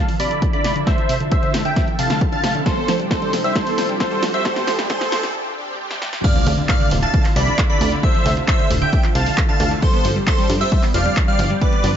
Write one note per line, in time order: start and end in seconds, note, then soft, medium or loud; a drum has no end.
0.00 0.13 D3 medium
0.00 0.13 F3 medium
0.00 0.13 E4 medium
0.00 0.13 A4 medium
0.00 riser medium
0.09 0.14 F3 medium
0.09 open hi-hat medium
0.20 0.25 C3 loud
0.20 0.35 D3 medium
0.20 0.35 F3 medium
0.20 0.35 E4 medium
0.20 0.35 A4 medium
0.20 0.41 D5 medium
0.20 0.41 B5 medium
0.20 0.41 B6 medium
0.20 open hi-hat loud
0.31 0.36 D3 medium
0.31 closed hi-hat medium
0.42 0.58 D3 medium
0.42 0.58 F3 medium
0.42 0.58 E4 medium
0.42 0.58 A4 medium
0.42 kick loud
0.42 closed hi-hat medium
0.53 0.59 D3 loud
0.53 0.74 D5 medium
0.53 0.74 B5 loud
0.53 0.74 B6 medium
0.53 closed hi-hat soft
0.64 0.70 C3 medium
0.64 0.72 D3 medium
0.64 0.72 F3 medium
0.64 0.72 E4 medium
0.64 0.72 A4 medium
0.64 snare medium
0.64 open hi-hat loud
0.76 0.81 D3 loud
0.76 0.84 D3 medium
0.76 0.84 F3 medium
0.76 0.84 E4 medium
0.76 0.84 A4 medium
0.76 closed hi-hat medium
0.87 1.03 D3 medium
0.87 0.92 D3 loud
0.87 1.03 F3 medium
0.87 1.03 E4 medium
0.87 1.03 A4 medium
0.87 1.15 C5 medium
0.87 1.15 E5 loud
0.87 1.15 E6 medium
0.87 kick loud
0.87 snare medium
0.87 closed hi-hat medium
0.98 1.03 F3 medium
0.98 closed hi-hat soft
1.09 1.15 C3 loud
1.09 open hi-hat loud
1.20 1.26 D3 medium
1.20 1.36 D3 medium
1.20 1.36 F3 medium
1.20 1.36 E4 medium
1.20 1.36 A4 medium
1.20 closed hi-hat medium
1.32 1.53 C5 medium
1.32 1.53 E5 loud
1.32 1.53 E6 medium
1.32 kick loud
1.32 closed hi-hat medium
1.43 1.48 D3 loud
1.43 1.59 D3 medium
1.43 1.59 F3 medium
1.43 1.59 E4 medium
1.43 1.59 A4 medium
1.43 closed hi-hat soft
1.54 1.59 C3 medium
1.54 snare medium
1.54 open hi-hat loud
1.65 1.70 D3 loud
1.65 1.86 E5 medium
1.65 1.86 G5 loud
1.65 1.86 G6 loud
1.65 closed hi-hat medium
1.76 1.82 D3 loud
1.76 1.92 D3 medium
1.76 1.92 F3 medium
1.76 1.92 E4 medium
1.76 1.92 A4 medium
1.76 kick loud
1.76 snare medium
1.76 closed hi-hat medium
1.88 1.93 F3 medium
1.88 closed hi-hat soft
1.99 2.04 C3 loud
1.99 2.14 D3 medium
1.99 2.14 F3 loud
1.99 2.14 E4 medium
1.99 2.14 A4 medium
1.99 2.20 F5 medium
1.99 2.20 A5 loud
1.99 2.20 A6 medium
1.99 open hi-hat loud
2.10 2.15 D3 medium
2.10 snare medium
2.10 open hi-hat medium
2.21 2.37 D3 medium
2.21 2.37 F3 medium
2.21 2.37 E4 medium
2.21 2.37 A4 medium
2.21 kick loud
2.21 closed hi-hat medium
2.32 2.38 D3 loud
2.32 2.54 F5 medium
2.32 2.54 A5 loud
2.32 2.54 A6 medium
2.32 closed hi-hat soft
2.44 2.49 C3 medium
2.44 2.51 D3 medium
2.44 2.51 F3 medium
2.44 2.51 E4 medium
2.44 2.51 A4 loud
2.44 snare medium
2.44 open hi-hat loud
2.55 2.63 D3 medium
2.55 2.60 D3 loud
2.55 2.63 F3 medium
2.55 2.63 E4 medium
2.55 2.63 A4 medium
2.55 closed hi-hat medium
2.66 2.82 C3 medium
2.66 2.82 G3 medium
2.66 2.71 G3 medium
2.66 2.82 D4 medium
2.66 2.82 G4 medium
2.66 2.94 A4 medium
2.66 2.94 C5 loud
2.66 2.94 C6 medium
2.66 kick loud
2.66 snare medium
2.66 closed hi-hat medium
2.77 2.82 B3 medium
2.88 2.94 F3 medium
2.88 snare medium
2.88 open hi-hat loud
3.00 3.15 C3 medium
3.00 3.05 G3 medium
3.00 3.15 G3 medium
3.00 3.15 D4 loud
3.00 3.15 G4 loud
3.00 closed hi-hat medium
3.11 3.32 A4 medium
3.11 3.32 C5 loud
3.11 3.32 C6 medium
3.11 kick loud
3.11 snare medium
3.11 closed hi-hat medium
3.22 3.38 C3 medium
3.22 3.27 G3 loud
3.22 3.38 G3 medium
3.22 3.38 D4 medium
3.22 3.38 G4 medium
3.22 closed hi-hat soft
3.33 3.38 F3 medium
3.33 snare medium
3.33 open hi-hat loud
3.44 3.50 G3 medium
3.44 3.54 C5 medium
3.44 3.54 E5 medium
3.44 3.54 E6 medium
3.44 closed hi-hat soft
3.56 3.71 C3 medium
3.56 3.61 G3 loud
3.56 3.71 G3 medium
3.56 3.71 D4 medium
3.56 3.71 G4 medium
3.56 3.84 A4 medium
3.56 3.84 C5 loud
3.56 3.84 C6 medium
3.56 kick loud
3.56 snare medium
3.56 closed hi-hat medium
3.67 3.72 B3 medium
3.67 open hi-hat medium
3.78 3.94 C3 medium
3.78 3.83 F3 loud
3.78 3.94 G3 loud
3.78 3.94 D4 loud
3.78 3.94 G4 medium
3.78 snare medium
3.78 open hi-hat loud
3.89 3.94 G3 medium
3.89 closed hi-hat medium
4.00 4.16 C3 medium
4.00 4.16 G3 loud
4.00 4.16 D4 loud
4.00 4.16 G4 loud
4.00 4.21 A4 medium
4.00 4.21 C5 medium
4.00 4.21 C6 medium
4.00 kick loud
4.00 snare medium
4.00 closed hi-hat medium
4.12 4.17 G3 medium
4.12 closed hi-hat soft
4.23 4.31 C3 medium
4.23 4.28 F3 medium
4.23 4.31 G3 medium
4.23 4.31 D4 medium
4.23 4.31 G4 medium
4.23 snare medium
4.23 open hi-hat loud
4.34 4.42 C3 medium
4.34 4.39 G3 medium
4.34 4.42 G3 medium
4.34 4.42 D4 medium
4.34 4.42 G4 medium
4.34 4.43 C5 medium
4.34 4.43 E5 medium
4.34 4.43 E6 medium
4.34 closed hi-hat soft
4.45 4.61 C3 loud
4.45 4.50 G3 loud
4.45 4.61 G3 medium
4.45 4.61 D4 medium
4.45 4.61 G4 loud
4.45 4.73 A4 medium
4.45 4.73 C5 loud
4.45 4.73 C6 loud
4.45 kick loud
4.45 snare medium
4.45 closed hi-hat medium
4.56 4.61 B3 medium
4.56 snare medium
4.56 closed hi-hat soft
4.67 4.73 F3 loud
4.67 snare medium
4.67 open hi-hat loud
4.79 4.94 C3 medium
4.79 4.84 G3 medium
4.79 4.94 G3 medium
4.79 4.94 D4 loud
4.79 4.94 G4 loud
4.79 snare medium
4.79 closed hi-hat medium
4.90 4.95 G3 loud
4.90 5.18 A4 medium
4.90 5.18 C5 loud
4.90 5.18 C6 loud
4.90 kick loud
4.90 snare loud
4.90 closed hi-hat medium
5.01 5.17 C3 medium
5.01 5.17 G3 medium
5.01 5.06 B3 medium
5.01 5.17 D4 medium
5.01 5.17 G4 medium
5.01 snare medium
5.01 closed hi-hat soft
5.12 5.17 F3 loud
5.12 snare loud
5.12 open hi-hat loud
5.23 5.29 G3 medium
5.23 snare medium
5.23 closed hi-hat soft
5.35 5.50 C3 loud
5.35 5.50 G3 medium
5.35 5.50 D4 medium
5.35 5.50 G4 medium
5.57 5.73 C3 medium
5.57 5.73 G3 medium
5.57 5.73 D4 loud
5.57 5.73 G4 loud
5.79 5.95 C3 medium
5.79 5.95 G3 loud
5.79 5.95 D4 loud
5.79 5.95 G4 loud
5.91 snare medium
6.02 6.10 C3 medium
6.02 6.10 G3 medium
6.02 6.10 D4 medium
6.02 6.10 G4 medium
6.02 snare medium
6.13 6.21 C3 medium
6.13 6.21 G3 medium
6.13 6.21 D4 medium
6.13 6.21 G4 medium
6.13 snare medium
6.24 6.29 D3 loud
6.24 6.40 D3 medium
6.24 6.40 A3 medium
6.24 6.40 E4 medium
6.24 6.40 F4 medium
6.24 6.52 D5 medium
6.24 6.52 F5 loud
6.24 6.52 F6 loud
6.24 kick loud
6.24 closed hi-hat medium
6.24 crash loud
6.24 impact medium
6.35 6.41 F3 medium
6.35 closed hi-hat soft
6.47 6.61 D2 loud
6.47 6.52 C3 loud
6.47 open hi-hat loud
6.58 6.63 D3 medium
6.58 6.74 D3 medium
6.58 6.74 A3 medium
6.58 6.74 E4 medium
6.58 6.74 F4 medium
6.58 closed hi-hat medium
6.69 6.90 D5 medium
6.69 6.90 F5 loud
6.69 6.90 F6 loud
6.69 kick loud
6.69 clap loud
6.69 closed hi-hat medium
6.80 6.85 D3 loud
6.80 6.96 D3 loud
6.80 6.96 A3 medium
6.80 6.96 E4 medium
6.80 6.96 F4 medium
6.80 closed hi-hat soft
6.91 7.06 D1 medium
6.91 6.97 C3 medium
6.91 open hi-hat loud
7.03 7.08 D3 loud
7.03 7.24 F5 medium
7.03 7.24 A5 loud
7.03 7.24 A6 loud
7.03 closed hi-hat medium
7.14 7.29 D3 medium
7.14 7.19 D3 loud
7.14 7.29 A3 medium
7.14 7.29 E4 medium
7.14 7.29 F4 medium
7.14 kick loud
7.14 closed hi-hat medium
7.25 7.30 F3 medium
7.25 clap soft
7.25 open hi-hat medium
7.36 7.51 C2 medium
7.36 7.41 C3 loud
7.36 7.52 D3 loud
7.36 7.52 A3 medium
7.36 7.52 E4 loud
7.36 7.52 F4 medium
7.36 7.57 D5 medium
7.36 7.57 B5 loud
7.36 7.57 B6 medium
7.36 open hi-hat loud
7.47 7.53 D3 medium
7.47 closed hi-hat medium
7.58 7.74 D3 loud
7.58 7.74 A3 loud
7.58 7.74 E4 loud
7.58 7.74 F4 loud
7.58 kick loud
7.58 clap loud
7.58 closed hi-hat medium
7.70 7.75 D3 loud
7.70 7.91 D5 medium
7.70 7.91 B5 loud
7.70 7.91 B6 loud
7.81 7.96 D2 loud
7.81 7.86 C3 medium
7.81 7.89 D3 medium
7.81 7.89 A3 medium
7.81 7.89 E4 medium
7.81 7.89 F4 medium
7.81 open hi-hat loud
7.92 8.00 D3 medium
7.92 7.97 D3 loud
7.92 8.00 A3 medium
7.92 8.00 E4 medium
7.92 8.00 F4 medium
7.92 closed hi-hat medium
8.03 8.19 D3 medium
8.03 8.09 D3 loud
8.03 8.19 A3 medium
8.03 8.19 E4 medium
8.03 8.19 F4 loud
8.03 8.32 C5 medium
8.03 8.32 E5 loud
8.03 8.31 E6 loud
8.03 kick loud
8.03 closed hi-hat medium
8.15 8.20 F3 medium
8.15 closed hi-hat soft
8.26 8.40 D2 loud
8.26 8.31 C3 loud
8.26 open hi-hat loud
8.37 8.53 D3 medium
8.37 8.42 D3 medium
8.37 8.53 A3 medium
8.37 8.53 E4 medium
8.37 8.53 F4 loud
8.37 closed hi-hat medium
8.48 8.69 C5 medium
8.48 8.69 E5 loud
8.48 8.69 E6 loud
8.48 kick loud
8.48 clap loud
8.48 closed hi-hat medium
8.59 8.64 D3 loud
8.59 8.75 D3 medium
8.59 8.75 A3 medium
8.59 8.75 E4 medium
8.59 8.75 F4 medium
8.59 closed hi-hat soft
8.70 8.85 D1 medium
8.70 8.76 C3 medium
8.70 open hi-hat loud
8.82 8.87 D3 loud
8.82 9.03 E5 medium
8.82 9.03 G5 loud
8.82 9.03 G6 medium
8.82 closed hi-hat medium
8.93 8.98 D3 loud
8.93 9.09 D3 medium
8.93 9.09 A3 medium
8.93 9.09 E4 medium
8.93 9.09 F4 medium
8.93 kick loud
8.93 closed hi-hat medium
9.04 9.09 F3 medium
9.04 clap soft
9.04 closed hi-hat soft
9.15 9.30 C2 loud
9.15 9.20 C3 loud
9.15 9.31 D3 medium
9.15 9.31 A3 medium
9.15 9.31 E4 medium
9.15 9.31 F4 loud
9.15 9.36 F5 medium
9.15 9.36 A5 loud
9.15 9.36 A6 medium
9.15 open hi-hat loud
9.26 9.32 D3 medium
9.26 open hi-hat medium
9.38 9.53 D3 medium
9.38 9.53 A3 medium
9.38 9.53 E4 loud
9.38 9.53 F4 loud
9.38 kick loud
9.38 clap loud
9.38 closed hi-hat medium
9.49 9.54 D3 loud
9.49 9.70 F5 medium
9.49 9.70 A5 loud
9.49 9.70 A6 medium
9.49 closed hi-hat soft
9.60 9.75 D2 loud
9.60 9.65 C3 medium
9.60 9.68 D3 medium
9.60 9.68 A3 medium
9.60 9.68 E4 medium
9.60 9.68 F4 medium
9.60 open hi-hat loud
9.71 9.79 D3 medium
9.71 9.76 D3 loud
9.71 9.79 A3 medium
9.71 9.79 E4 medium
9.71 9.79 F4 medium
9.71 closed hi-hat medium
9.82 9.98 D3 medium
9.82 9.88 G3 loud
9.82 9.98 G3 medium
9.82 9.98 C4 medium
9.82 9.98 G4 medium
9.82 10.11 A4 medium
9.82 10.11 C5 loud
9.82 10.11 C6 loud
9.82 kick loud
9.82 closed hi-hat medium
9.94 9.99 B3 medium
9.94 closed hi-hat soft
10.05 10.19 G1 loud
10.05 10.10 F3 loud
10.05 open hi-hat loud
10.16 10.32 D3 medium
10.16 10.21 G3 medium
10.16 10.32 G3 loud
10.16 10.32 C4 medium
10.16 10.32 G4 loud
10.16 closed hi-hat soft
10.27 10.48 A4 medium
10.27 10.48 C5 loud
10.27 10.48 C6 loud
10.27 kick loud
10.27 clap loud
10.27 closed hi-hat medium
10.38 10.54 D3 medium
10.38 10.44 G3 loud
10.38 10.54 G3 medium
10.38 10.54 C4 medium
10.38 10.54 G4 medium
10.38 closed hi-hat soft
10.49 10.64 G2 medium
10.49 10.55 F3 medium
10.49 open hi-hat loud
10.61 10.66 G3 loud
10.61 10.82 C5 medium
10.61 10.82 E5 loud
10.61 10.82 E6 loud
10.61 closed hi-hat medium
10.72 10.88 D3 medium
10.72 10.77 G3 loud
10.72 10.88 G3 loud
10.72 10.88 C4 medium
10.72 10.88 G4 medium
10.72 kick loud
10.72 closed hi-hat medium
10.83 10.88 B3 medium
10.83 clap soft
10.83 open hi-hat medium
10.94 11.09 F1 loud
10.94 11.10 D3 loud
10.94 11.00 F3 loud
10.94 11.10 G3 medium
10.94 11.10 C4 medium
10.94 11.10 G4 medium
10.94 11.16 D5 medium
10.94 11.16 F5 loud
10.94 11.16 F6 medium
10.94 open hi-hat loud
11.06 11.11 G3 medium
11.06 closed hi-hat medium
11.17 11.32 D3 loud
11.17 11.32 G3 medium
11.17 11.32 C4 medium
11.17 11.32 G4 medium
11.17 kick loud
11.17 clap loud
11.17 closed hi-hat medium
11.28 11.33 G3 loud
11.28 11.49 D5 medium
11.28 11.49 F5 loud
11.28 11.49 F6 medium
11.39 11.54 G1 loud
11.39 11.47 D3 medium
11.39 11.44 F3 medium
11.39 11.47 G3 medium
11.39 11.47 C4 medium
11.39 11.47 G4 medium
11.39 open hi-hat loud
11.50 11.58 D3 medium
11.50 11.56 G3 loud
11.50 11.58 G3 medium
11.50 11.58 C4 medium
11.50 11.58 G4 medium
11.50 closed hi-hat medium
11.61 11.77 D3 medium
11.61 11.67 G3 loud
11.61 11.77 G3 medium
11.61 11.77 C4 medium
11.61 11.77 G4 medium
11.61 11.90 B4 medium
11.61 11.90 D5 loud
11.61 11.90 D6 loud
11.61 kick loud
11.61 closed hi-hat medium
11.73 11.78 B3 medium
11.73 closed hi-hat soft
11.84 11.97 G1 loud
11.84 11.89 F3 loud
11.84 open hi-hat loud